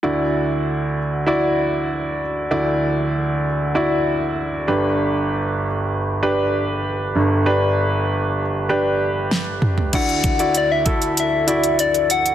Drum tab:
CC |----------------|----------------|----------------|----------------|
HH |----------------|----------------|----------------|----------------|
SD |----------------|----------------|----------------|------------o---|
T2 |----------------|----------------|----------------|--------------o-|
FT |----------------|----------------|----------------|---------------o|
BD |----------------|----------------|----------------|----------------|

CC |x---------------|
HH |xxxxx-xxx-xxxxxx|
SD |----------------|
T2 |----------------|
FT |----------------|
BD |o-o---o---------|